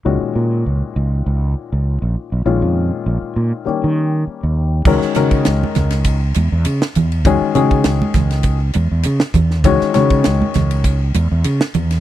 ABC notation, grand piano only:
X:1
M:4/4
L:1/8
Q:"Swing 16ths" 1/4=100
K:C#dor
V:1 name="Grand piano"
[A,,D,G,CF]8 | [A,,D,G,C^E]4 [D,=G,A,C=G]4 | [D,G,CFA] [D,G,CFA]3 z4 | [D,G,CFG] [D,G,CFG]3 z4 |
[D,G,CFc] [D,G,CFc]3 z4 |]